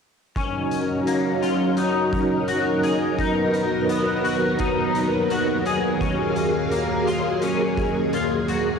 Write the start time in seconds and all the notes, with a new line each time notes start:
0.36 F#3 C#4 D#4 A#4, kick, closed hi-hat
0.71 closed hi-hat
1.07 A#3, closed hi-hat
1.43 F4, closed hi-hat
1.77 D#4, closed hi-hat
2.13 kick, closed hi-hat
2.48 F#4, closed hi-hat
2.83 G#4, closed hi-hat
3.19 D#2 F#3 B3 D#4, kick, closed hi-hat
3.54 closed hi-hat
3.89 B3, closed hi-hat
4.24 F#4, closed hi-hat
4.59 D#4, kick, closed hi-hat
4.95 closed hi-hat
5.30 F#4, closed hi-hat
5.66 G#4, closed hi-hat
6.00 A#3 C#4 G#4 F5, kick, closed hi-hat
6.36 closed hi-hat
6.71 A#3, closed hi-hat
7.07 F4, closed hi-hat
7.42 C#4, closed hi-hat
7.77 kick, closed hi-hat
8.13 F4, closed hi-hat
8.48 F#4, closed hi-hat